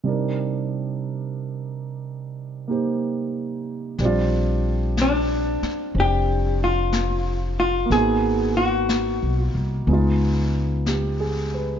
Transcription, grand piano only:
0.04 C3 G3 D4 D#4
0.09 A#4
2.68 A#3 D#4 G4 C5
4.00 G3 C4 D4
4.05 F4
5.96 C4 D4
7.86 A#3
7.91 B3 D#4
7.98 F#4
9.88 G#3 B3 D#4
9.93 F4
10.88 G4
11.20 G#4
11.54 B4

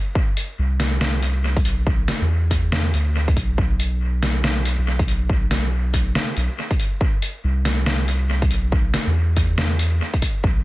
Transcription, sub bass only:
0.58 C2
1.65 B1
2.21 E2
2.94 D2
3.37 B1
3.58 B1
4.78 B1
6.37 B1
7.44 C2
8.51 B1
9.07 E2
10.44 B1

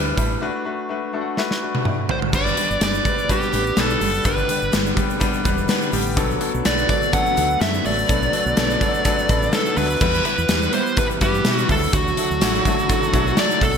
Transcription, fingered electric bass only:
Already playing: D2
0.17 A1
2.33 G1
2.70 G1
2.81 G1
3.53 A1
3.77 B1
4.01 F#1
4.25 G1
4.62 G1
4.73 G1
5.45 E1
5.93 A1
6.17 B1
6.54 B1
6.65 B1
7.37 D2
7.61 F#2
7.85 A1
8.09 B1
8.46 B1
8.57 B1
9.29 A1
9.77 D2
10.01 E2
10.38 E2
10.49 E2
11.22 G2
11.45 B2
11.69 D2
11.93 D2
12.31 D2
12.41 A1
13.14 B1
13.61 B1

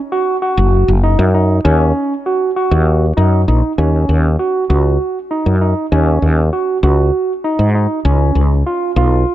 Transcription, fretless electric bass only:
0.57 F#1
0.88 F#1
1.19 F#2
1.65 D#2
2.71 D#2
3.17 F#2
3.48 A#1
3.78 D#2
4.09 D#2
4.70 C#2
5.46 F#2
5.92 D#2
6.22 D#2
6.83 C#2
7.59 G#2
8.05 C#2
8.35 C#2
8.96 B1

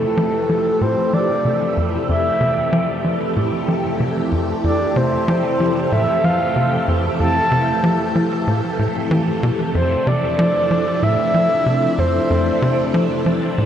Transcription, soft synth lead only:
Already playing: A4
0.82 C5
1.14 D5
2.09 E5
4.65 D5
4.97 C5
5.93 E5
6.24 F5
7.20 A5
9.75 C5
10.07 D5
11.03 E5
11.99 C5

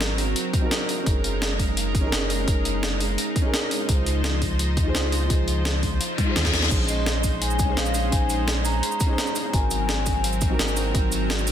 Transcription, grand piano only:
Already playing: C4 D#4 F#4 A#4
0.59 C4 D#4
0.64 F#4 A#4
1.03 C#4 D#4
1.07 G#4 A#4
2.00 C#4 D#4
2.05 G#4 A#4
2.44 C#4 D#4
2.49 G#4 A#4
3.42 C#4 D#4
3.46 G#4 A#4
3.86 D#4 F4
3.90 G#4 C5
4.83 D#4 F4
4.87 G#4 C5
5.27 D#4 F4
5.31 G#4 C5
6.24 D#4 F4
6.28 G#4 C5
6.68 C#4 D#4
6.72 G#4 C5
7.65 C#4 D#4
7.69 G#4 C5
8.09 C#4 D#4
8.13 G#4 C5
9.06 C#4 D#4
9.11 G#4 C5
9.50 C4 D#4
9.54 F#4 A#4
10.47 C4 D#4
10.52 F#4 A#4
10.91 C4 D#4
10.96 F#4 A#4

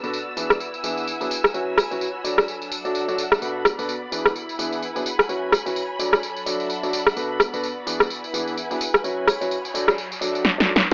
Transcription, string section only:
Already playing: B3
0.00 F#4 D5
0.37 E4
0.56 B4
0.80 F#5 G#5
1.31 F#4
1.73 C#5 B5
2.24 F#3
2.46 D4 A4
2.78 E5 F#5
3.41 B3
3.74 F#4 D5
4.12 E4
4.55 B4 F#5 G#5
5.06 F#4
5.48 C#5 B5
5.99 F#3
6.12 D4 A4
6.53 E5 F#5
7.17 B3
7.35 F#4
7.50 D5
7.87 E4
8.14 G#5
8.28 B4 F#5
8.81 F#4
9.24 C#5 B5
9.74 F#3
10.17 D4
10.28 A4 E5 F#5

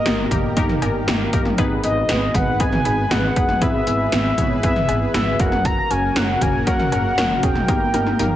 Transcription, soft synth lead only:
Already playing: D#5
1.84 D#5
2.35 F#5
2.60 G#5
3.11 F#5
3.62 E5
4.13 E5
4.63 E5
5.14 E5
5.40 F#5
5.65 A#5
5.90 G#5
6.16 F#5
6.42 G#5
6.66 F#5
7.43 G5

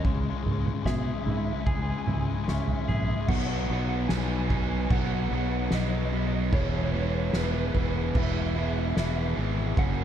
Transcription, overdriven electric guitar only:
0.05 C#3 G#3
0.13 C#3 G#3
0.20 C#3 G#3
0.29 C#3 G#3
0.36 C#3 G#3
0.43 C#3 G#3
0.51 C#3 G#3
0.58 C#3 G#3
0.67 C#3 G#3
0.74 C#3 G#3
0.82 C#3 G#3
0.90 C#3 G#3
0.98 C#3 G#3
1.05 C#3 G#3
1.13 C#3 G#3
1.21 C#3 G#3
1.29 C#3 G#3
1.36 C#3 G#3
1.44 C#3 G#3
1.52 C#3 G#3
1.60 C#3 G#3
1.67 C#3 G#3
1.74 C#3 G#3
1.83 C#3 G#3
1.91 C#3 G#3
1.97 C#3 G#3
2.05 C#3 G#3
2.14 C#3 G#3
2.22 C#3 G#3
2.28 C#3 G#3
2.36 C#3 G#3
2.44 C#3 G#3
2.52 C#3 G#3
2.60 C#3 G#3
2.67 C#3 G#3
2.75 C#3 G#3
2.83 C#3 G#3
2.91 C#3 G#3
2.97 C#3 G#3
3.06 C#3 G#3
3.14 C#3 G#3
3.21 C#3 G#3
3.30 B2 F#3 B3 D#4
3.71 B2 F#3 B3 D#4
4.10 B2 F#3 B3 D#4
4.50 B2 F#3 B3 D#4
4.91 B2 F#3 B3 D#4
5.32 B2 F#3 B3 D#4
5.72 B2 F#3 B3 D#4
6.12 B2 F#3 B3 D#4
6.52 E3 G#3 B3 E4
6.95 E3 G#3 B3 E4
7.36 E3 G#3 B3 E4
7.75 E3 G#3 B3 E4
8.17 E3 G#3 B3 E4
8.56 E3 G#3 B3 E4
8.96 E3 G#3 B3 E4
9.36 E3 G#3 B3 E4
9.77 F#2 C#3 F#3 A#3 C#4

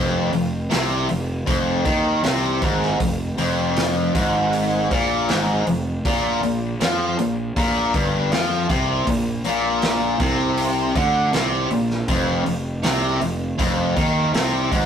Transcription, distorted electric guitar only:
Already playing: F2
0.32 F2
0.70 C3
1.08 F2
1.46 F2
1.85 D#3
2.23 C3
2.62 G#2
3.00 F2
3.38 F2
4.15 G#2
4.90 A#2
5.29 G#2
5.67 F2
6.06 A#2
6.43 A#2
6.81 F3
7.19 A#2
7.57 A#2
7.94 G2
8.32 F3
8.69 C3
9.07 A#2
9.45 A#2
10.20 C3
10.96 D3
11.33 C3
11.71 A#2
12.08 F2
12.45 F2
12.84 C3
13.21 F2
13.58 F2
13.96 D#3
14.33 C3
14.72 G#2

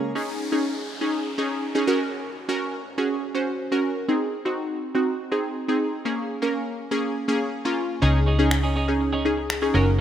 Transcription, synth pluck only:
0.15 C#4 D#4 G#4
0.52 C#4 D#4 G#4
1.01 C#4 D#4 G#4
1.38 C#4 D#4 G#4
1.75 C#4 D#4 G#4
1.87 C#4 F#4 A#4
2.49 C#4 F#4 A#4
2.98 C#4 F#4 G#4
3.35 C#4 F#4 C5
3.72 C#4 F#4 A#4
4.08 C4 D#4 G#4
4.45 C4 D#4 F#4
4.95 C4 D#4 F#4
5.31 C4 D#4 G#4
5.68 C4 D#4 G#4
6.05 A#3 C#4 G#4
6.42 A#3 C#4 A#4
6.91 A#3 C#4 G#4
7.28 A#3 C#4 G#4
7.65 A#3 C#4 F4
8.02 C#4 D#4 G#4
8.39 C#4 D#4 G#4
8.88 C#4 D#4 G#4
9.25 C#4 D#4 G#4
9.62 C#4 D#4 G#4
9.74 C#4 F#4 A#4

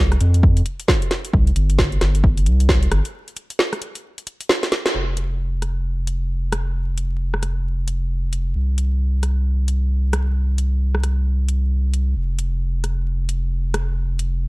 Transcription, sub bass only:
Already playing: C2
0.21 F2
1.33 C2
1.56 G1
2.01 G1
2.46 C2
2.92 G1
4.95 F1
8.55 C2
12.16 F1

